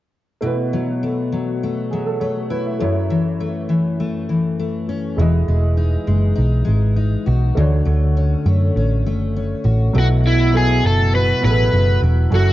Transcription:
0.41 2.80 B2 medium
0.41 2.76 A3 medium
0.41 2.77 E4 medium
0.41 2.77 F#4 medium
0.46 1.90 B4 medium
0.73 1.32 F#3 soft
1.03 1.63 A3 medium
1.32 1.92 F#3 soft
1.63 2.21 A3 medium
1.91 3.10 F#3 soft
1.91 2.05 G#4 soft
2.06 2.20 A4 medium
2.20 3.40 A3 medium
2.20 2.49 C#5 medium
2.50 4.88 E4 medium
2.50 2.65 B4 medium
2.66 2.94 E5 medium
2.79 5.19 F#2 medium
2.79 5.14 A3 medium
2.79 5.15 E4 medium
2.79 5.16 F#4 medium
2.84 5.17 C#5 medium
3.10 3.69 E3 medium
3.40 3.99 A3 medium
3.69 4.29 E3 medium
4.00 4.58 A3 medium
4.29 5.19 E3 soft
4.59 5.25 A3 medium
4.89 5.25 C#4 medium
5.16 5.42 E1 medium
5.16 7.57 E3 medium
5.16 7.52 G#3 medium
5.16 7.52 E4 medium
5.16 7.53 F#4 medium
5.21 7.54 D#5 medium
5.48 5.96 E1 medium
5.48 6.06 G#3 medium
5.77 6.34 D#4 medium
6.07 6.32 F#1 medium
6.07 6.64 G#3 medium
6.35 6.62 B1 medium
6.35 6.95 D#4 medium
6.65 7.15 G#1 medium
6.65 7.61 G#3 medium
6.96 7.62 D#4 medium
7.26 7.51 B1 medium
7.26 9.64 F#4 medium
7.55 7.81 D2 medium
7.55 9.94 D3 medium
7.55 9.90 A3 medium
7.55 9.91 D4 medium
7.55 9.91 F#4 medium
7.60 9.93 C#5 medium
7.85 8.34 D2 medium
7.85 8.45 A3 medium
8.17 8.76 C#4 medium
8.46 8.70 F#2 medium
8.46 9.06 A3 medium
8.76 9.06 A1 medium
8.76 9.35 C#4 medium
9.06 9.53 F#1 medium
9.06 10.23 A3 medium
9.36 10.01 C#4 medium
9.64 9.89 A1 medium
9.64 10.54 F#4 medium
9.93 10.80 B1 medium
9.93 12.33 B2 medium
9.93 10.42 F#3 medium
9.93 10.42 B3 medium
9.93 10.43 E4 medium
9.93 10.43 A4 medium
9.99 10.07 F#4 medium
10.24 12.53 A3 medium
10.24 10.54 E4 medium
10.52 11.25 F#3 medium
10.52 11.25 B3 medium
10.52 11.26 E4 medium
10.52 11.15 F#4 medium
10.52 11.26 A4 medium
10.57 10.86 G#4 medium
10.84 11.32 F#1 medium
10.84 11.43 E4 medium
10.84 11.15 A4 medium
11.15 11.73 F#4 medium
11.15 11.44 B4 medium
11.41 11.68 A1 medium
11.41 12.14 F#3 medium
11.41 12.14 B3 medium
11.41 12.15 E4 medium
11.41 12.03 E4 medium
11.41 11.50 G#4 medium
11.41 12.00 B4 medium
11.50 12.18 A4 medium
11.73 11.97 F#1 medium
11.73 12.53 F#4 medium
12.02 12.26 E1 medium
12.02 12.53 E4 medium
12.30 12.53 F#1 medium
12.30 12.53 F#2 medium
12.30 12.53 F#3 medium
12.30 12.53 C#4 medium
12.30 12.53 E4 medium
12.30 12.53 A4 medium
12.35 12.53 F#4 medium

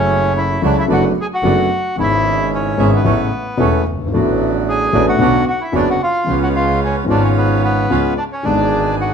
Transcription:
0.00 0.58 F#1 medium
0.00 0.58 F#2 medium
0.00 0.57 C#3 medium
0.00 0.58 F#3 medium
0.00 0.58 A3 medium
0.00 0.33 C#4 medium
0.00 0.59 E4 medium
0.00 0.39 C#5 medium
0.37 0.62 E4 medium
0.37 0.62 E5 medium
0.61 0.85 C#2 medium
0.61 0.85 C#3 medium
0.61 0.85 F#3 medium
0.61 0.85 A3 medium
0.61 0.76 D4 medium
0.61 0.85 E4 medium
0.66 0.77 D5 medium
0.78 0.84 E4 medium
0.78 0.86 E5 medium
0.88 1.12 F#1 medium
0.88 1.12 F#2 medium
0.88 1.12 D3 medium
0.88 1.12 F#3 medium
0.88 1.12 A3 medium
0.88 1.12 B3 medium
0.88 1.12 D4 medium
0.88 1.12 F#4 medium
0.92 1.04 F#4 medium
0.92 1.05 F#5 medium
1.21 1.26 G#4 medium
1.21 1.27 G#5 medium
1.33 1.96 F#4 medium
1.33 1.97 F#5 medium
1.43 1.66 F#1 medium
1.43 1.66 F#2 medium
1.43 1.66 D3 medium
1.43 1.66 F#3 medium
1.43 1.66 A3 medium
1.43 1.67 A3 medium
1.43 1.67 B3 medium
1.43 1.67 D4 medium
1.43 1.67 F#4 medium
1.96 2.75 G#1 medium
1.96 2.75 G#2 medium
1.96 2.74 C#3 medium
1.96 2.75 G#3 medium
1.96 2.76 B3 medium
1.96 2.75 C#4 medium
1.96 2.75 E4 medium
2.00 2.49 E4 medium
2.00 2.76 E4 medium
2.00 2.51 E5 medium
2.54 2.91 C#4 medium
2.54 2.91 C#5 medium
2.77 3.01 G#1 medium
2.77 3.01 G#2 medium
2.77 3.01 C#3 medium
2.77 3.01 G#3 medium
2.77 3.02 G#3 medium
2.77 3.01 B3 medium
2.77 3.01 C#4 medium
2.77 3.02 E4 medium
2.94 3.83 B3 medium
2.94 3.84 B4 medium
3.04 3.28 A1 medium
3.04 3.28 A2 medium
3.04 3.28 C#3 medium
3.04 3.28 A3 medium
3.04 3.28 B3 medium
3.04 3.28 C#4 medium
3.04 3.28 E4 medium
3.57 3.81 E1 medium
3.57 3.82 E1 medium
3.57 3.81 E2 medium
3.57 3.81 C#3 medium
3.57 3.81 A3 medium
3.57 3.82 A3 medium
3.57 3.81 B3 medium
3.57 3.82 B3 medium
3.57 3.82 C#4 medium
3.57 3.82 E4 medium
3.86 4.12 G1 medium
3.92 3.99 F#1 soft
3.99 4.06 G1 medium
4.06 4.13 G#1 medium
4.12 4.90 A1 medium
4.12 4.90 A2 medium
4.12 4.89 D3 medium
4.12 4.90 F#3 medium
4.12 4.90 A3 medium
4.12 4.90 B3 medium
4.12 4.90 D4 medium
4.16 4.91 F#4 medium
4.68 5.05 G#4 medium
4.68 5.06 G#5 medium
4.93 5.16 A1 medium
4.93 5.16 A2 medium
4.93 5.16 D3 medium
4.93 5.16 F#3 medium
4.93 5.16 A3 medium
4.93 5.16 B3 medium
4.93 5.16 D4 medium
4.93 5.16 F#4 medium
5.08 5.45 F#4 medium
5.08 5.45 F#5 loud
5.18 5.42 B1 medium
5.18 5.43 B1 medium
5.18 5.42 B2 medium
5.18 5.42 D3 medium
5.18 5.42 B3 medium
5.18 5.43 B3 medium
5.18 5.42 C#4 medium
5.18 5.43 C#4 medium
5.18 5.43 D4 medium
5.18 5.42 F#4 medium
5.47 5.60 F#4 medium
5.47 5.62 F#5 medium
5.61 5.73 E4 medium
5.61 5.75 E5 medium
5.72 5.96 F#1 medium
5.72 5.97 F#1 medium
5.72 5.96 F#2 medium
5.72 5.96 D3 medium
5.72 5.96 B3 medium
5.72 5.97 B3 medium
5.72 5.96 C#4 medium
5.72 5.97 C#4 medium
5.72 5.97 D4 medium
5.72 5.96 F#4 medium
5.77 5.88 D4 medium
5.77 5.89 D5 medium
5.90 6.01 F#4 medium
5.90 6.02 F#5 medium
6.02 6.39 F4 medium
6.02 6.40 F5 medium
6.26 7.04 C#2 medium
6.26 7.05 C#2 medium
6.26 7.02 C#3 medium
6.26 7.03 G#3 medium
6.26 7.04 B3 medium
6.26 7.05 B3 medium
6.26 7.05 C#4 medium
6.26 7.05 F4 medium
6.43 6.48 F#4 medium
6.43 6.49 F#5 medium
6.56 6.80 F4 medium
6.56 6.80 F5 medium
6.84 6.96 C#4 medium
6.84 6.96 C#5 medium
7.04 7.85 G#1 medium
7.04 7.85 G#2 medium
7.04 7.84 C#3 medium
7.04 7.84 G#3 medium
7.04 7.85 B3 medium
7.08 7.86 G#1 medium
7.08 7.87 B3 medium
7.08 7.87 C#4 medium
7.08 7.22 D4 medium
7.08 7.86 F4 medium
7.08 7.87 F4 medium
7.08 7.23 D5 medium
7.23 7.30 C#4 medium
7.23 7.29 C#5 medium
7.37 7.62 B3 medium
7.37 7.62 B4 medium
7.64 8.14 B3 medium
7.64 8.14 B4 medium
7.89 8.13 C#2 medium
7.89 8.13 C#3 medium
7.89 8.13 G#3 medium
7.89 8.13 B3 medium
7.89 8.13 C#4 medium
7.89 8.13 F4 medium
8.17 8.24 D4 medium
8.17 8.24 D5 medium
8.32 8.45 C#4 medium
8.32 8.44 C#5 medium
8.43 9.14 G#1 medium
8.43 9.14 G#2 medium
8.43 9.14 D3 medium
8.43 9.14 G#3 medium
8.43 9.14 B3 medium
8.43 9.14 D4 medium
8.43 8.95 D4 medium
8.43 9.14 G#4 medium
8.43 8.96 D5 medium
8.47 9.14 G#4 medium
9.01 9.13 F#4 medium
9.01 9.13 F#5 medium

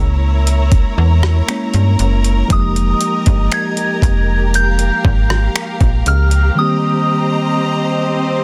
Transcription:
0.00 0.84 C#2 medium
0.00 1.43 G#3 medium
0.00 1.44 A#3 medium
0.00 1.45 C#4 medium
0.00 1.46 E4 medium
0.00 2.46 E4 medium
0.00 1.46 A#4 medium
0.00 6.53 A#4 medium
0.00 2.46 C#5 medium
0.00 6.53 A#5 medium
0.00 1.46 E6 loud
0.47 closed hi-hat medium
0.72 kick loud
0.72 closed hi-hat soft
0.98 1.42 E2 loud
1.23 cross-stick loud
1.48 2.50 G#3 medium
1.48 2.50 A#3 medium
1.48 2.51 C#4 medium
1.48 2.51 E4 medium
1.48 2.51 C#5 medium
1.48 finger snap loud
1.48 closed hi-hat medium
1.74 1.96 G2 medium
1.74 closed hi-hat soft
1.99 2.44 F#1 medium
1.99 closed hi-hat medium
2.24 closed hi-hat soft
2.48 2.94 F1 loud
2.48 6.52 F3 medium
2.48 2.56 G3 soft
2.48 6.53 A#3 medium
2.48 8.44 G4 medium
2.48 4.51 D#5 medium
2.48 kick loud
2.48 closed hi-hat medium
2.48 swell medium
2.53 6.56 G#3 medium
2.53 6.54 D#4 medium
2.53 6.55 G4 medium
2.53 3.56 D#6 medium
2.76 closed hi-hat soft
3.01 closed hi-hat medium
3.26 3.49 G1 medium
3.26 kick medium
3.26 closed hi-hat soft
3.52 4.58 G#6 loud
3.52 finger snap loud
3.52 closed hi-hat medium
3.77 closed hi-hat medium
4.02 4.91 F1 medium
4.02 kick medium
4.02 closed hi-hat medium
4.54 6.55 F5 medium
4.54 5.52 G6 medium
4.54 closed hi-hat medium
4.79 closed hi-hat soft
5.05 5.49 G#1 loud
5.05 kick loud
5.30 cross-stick loud
5.56 finger snap loud
5.56 closed hi-hat medium
5.81 6.03 A#1 medium
5.81 kick loud
5.81 closed hi-hat soft
6.06 6.51 C#2 medium
6.06 6.59 F6 medium
6.06 closed hi-hat medium
6.31 closed hi-hat soft
6.55 8.44 D#3 medium
6.55 8.44 G3 medium
6.55 8.44 A#3 medium
6.55 8.44 C5 medium
6.55 8.44 D#5 medium
6.55 8.44 A#5 loud
6.55 8.44 D#6 loud
6.59 8.44 C4 medium
6.59 8.44 G4 medium

